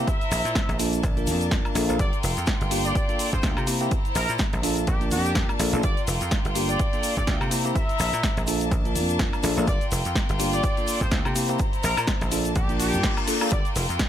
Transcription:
Already playing: E4 C5 A#5
0.08 E5, kick, closed hi-hat, shaker
0.21 closed hi-hat, shaker
0.31 A#1, open hi-hat, shaker
0.45 A#2, closed hi-hat, shaker
0.55 kick, snare, closed hi-hat, shaker
0.69 A#1, closed hi-hat, shaker
0.79 A#3 D4 F4 A4 A5, open hi-hat, shaker
0.93 closed hi-hat, shaker
1.03 A#1, kick, closed hi-hat, shaker
1.16 A#3 D4 F4 A#4, closed hi-hat, shaker
1.27 F2, open hi-hat, shaker
1.40 closed hi-hat, shaker
1.51 kick, snare, closed hi-hat, shaker
1.65 high woodblock, shaker
1.75 A#1 A#3 D4 F4 A4, open hi-hat, shaker
1.88 A#1 A#3 D4 F4 A4, closed hi-hat, shaker
1.99 G1 F4 D5 G5, kick, closed hi-hat, shaker
2.13 closed hi-hat, shaker
2.23 F1, open hi-hat, shaker
2.37 F2, closed hi-hat, shaker
2.46 kick, snare, closed hi-hat, shaker
2.48 shaker
2.61 G1, closed hi-hat, shaker
2.71 A#3 D4 F4 G4, open hi-hat, shaker
2.85 D5, closed hi-hat, shaker
2.95 kick, closed hi-hat, shaker
3.08 A#3 D4 F4 A4, closed hi-hat, shaker
3.19 open hi-hat, shaker
3.33 G2 C5, kick, shaker
3.42 D2, kick, snare, closed hi-hat, shaker
3.44 shaker
3.57 C3, high woodblock, shaker
3.67 A#3 C4 E4 G4 C5 A#5, open hi-hat, shaker
3.81 A#3 C4 E4 G4, closed hi-hat, shaker
3.91 kick, closed hi-hat, shaker
4.05 closed hi-hat, shaker
4.15 A#1 A#4, open hi-hat, shaker
4.28 A#2, closed hi-hat, shaker
4.38 kick, snare, closed hi-hat, shaker
4.40 shaker
4.53 A#1, closed hi-hat, shaker
4.63 A#3 D4 F4 A4 A5, open hi-hat, shaker
4.77 closed hi-hat, shaker
4.87 A#1 G4, kick, closed hi-hat, shaker
5.00 A#3 D4 F4 A#4, closed hi-hat, shaker
5.11 F2 G4, open hi-hat, shaker
5.25 closed hi-hat, shaker
5.35 kick, snare, closed hi-hat, shaker
5.49 high woodblock, shaker
5.59 A#1 A#3 D4 F4 A4, open hi-hat, shaker
5.73 A#1 A#3 D4 F4 A4, closed hi-hat, shaker
5.83 G1 F4 D5 G5, kick, closed hi-hat, shaker
5.97 closed hi-hat, shaker
6.07 F1, open hi-hat, shaker
6.20 F2, closed hi-hat, shaker
6.31 kick, snare, closed hi-hat, shaker
6.45 G1, closed hi-hat, shaker
6.55 A#3 D4 F4 G4, open hi-hat, shaker
6.68 D5, closed hi-hat, shaker
6.79 kick, closed hi-hat, shaker
6.93 A#3 D4 F4 A4, closed hi-hat, shaker
7.03 open hi-hat, shaker
7.17 G2 D5, kick, closed hi-hat, shaker
7.27 D2, kick, snare, closed hi-hat, shaker
7.41 C3, high woodblock, shaker
7.51 A#3 C4 E4 G4 C5 A#5, open hi-hat, shaker
7.64 A#3 C4 E4 G4, closed hi-hat, shaker
7.66 shaker
7.75 E5, kick, closed hi-hat, shaker
7.89 closed hi-hat, shaker
7.99 A#1, open hi-hat, shaker
8.00 shaker
8.13 A#2, closed hi-hat, shaker
8.23 kick, snare, closed hi-hat, shaker
8.37 A#1, closed hi-hat, shaker
8.47 A#3 D4 F4 A4 A5, open hi-hat, shaker
8.61 closed hi-hat, shaker
8.71 A#1, kick, closed hi-hat, shaker
8.84 A#3 D4 F4 A#4, closed hi-hat, shaker
8.95 F2, open hi-hat, shaker
9.09 closed hi-hat, shaker
9.19 kick, snare, closed hi-hat, shaker
9.33 high woodblock, shaker
9.43 A#1 A#3 D4 F4 A4, open hi-hat, shaker
9.57 A#1 A#3 D4 F4 A4, closed hi-hat, shaker
9.67 G1 F4 D5 G5, kick, closed hi-hat, shaker
9.68 shaker
9.81 closed hi-hat, shaker
9.91 F1, open hi-hat, shaker
10.05 F2, closed hi-hat, shaker
10.15 kick, snare, closed hi-hat, shaker
10.29 G1, closed hi-hat, shaker
10.39 A#3 D4 F4 G4, open hi-hat, shaker
10.53 D5, closed hi-hat, shaker
10.63 kick, closed hi-hat, shaker
10.64 shaker
10.77 A#3 D4 F4 A4, closed hi-hat, shaker
10.87 open hi-hat, shaker
11.01 G2 C5, kick, shaker
11.11 D2, kick, snare, closed hi-hat, shaker
11.25 C3, high woodblock, shaker
11.35 A#3 C4 E4 G4 C5 A#5, open hi-hat, shaker
11.48 A#3 C4 E4 G4, closed hi-hat, shaker
11.50 shaker
11.59 kick, closed hi-hat, shaker
11.60 shaker
11.73 closed hi-hat, shaker
11.83 A#1 A#4, open hi-hat, shaker
11.97 A#2, closed hi-hat, high woodblock, shaker
12.07 kick, snare, closed hi-hat, shaker
12.21 A#1, closed hi-hat, shaker
12.31 A#3 D4 F4 A4 A5, open hi-hat, shaker
12.44 closed hi-hat, shaker
12.55 A#1 G4, kick, closed hi-hat, reverse cymbal, shaker
12.68 A#3 D4 F4 A#4, closed hi-hat, shaker
12.80 G4, open hi-hat, shaker
12.93 G2, closed hi-hat, shaker
13.03 kick, snare, closed hi-hat, shaker
13.17 closed hi-hat, high woodblock, shaker
13.27 A#3 D4 F4 A4, open hi-hat, shaker
13.41 A#3 D4 F4 A4, closed hi-hat, high woodblock, shaker
13.52 G1 F4 D5 G5, kick, closed hi-hat, shaker
13.65 closed hi-hat, shaker
13.75 F1, open hi-hat, shaker
13.89 F2, closed hi-hat, shaker
13.99 kick, snare, closed hi-hat, shaker

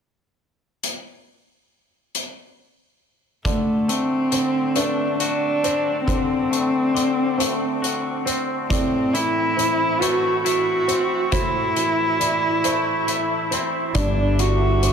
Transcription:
0.83 closed hi-hat
2.15 closed hi-hat
3.45 D3 A3 D5, kick, closed hi-hat
3.88 A3 C4, closed hi-hat
4.32 D3 C5, closed hi-hat
4.75 A3 D4 B4, closed hi-hat
5.20 D4 F#4, closed hi-hat
5.64 C4 C5, closed hi-hat
6.06 D3 C4 C5, kick, closed hi-hat
6.51 A3, closed hi-hat
6.94 D3 D5, closed hi-hat
7.38 A3 C5, closed hi-hat
7.82 F#4, closed hi-hat
8.25 C4 C5, closed hi-hat
8.69 A2 C4 D5, kick, closed hi-hat
9.13 E3 E4, closed hi-hat
9.57 E3 C5, closed hi-hat
10.00 A3 F#4 B4, closed hi-hat
10.43 E4 F#4, closed hi-hat
10.88 C4 C5, closed hi-hat
11.31 A2 E4 C5, kick, closed hi-hat
11.76 E3, closed hi-hat
12.20 E3 D5, closed hi-hat
12.64 A3 C5, closed hi-hat
13.07 E4, closed hi-hat
13.51 C4 C5, closed hi-hat
13.94 G1 G2 G3 D4 D5 E5 D6, kick, closed hi-hat
14.39 D3 F#4, closed hi-hat
14.82 E3 C5, closed hi-hat

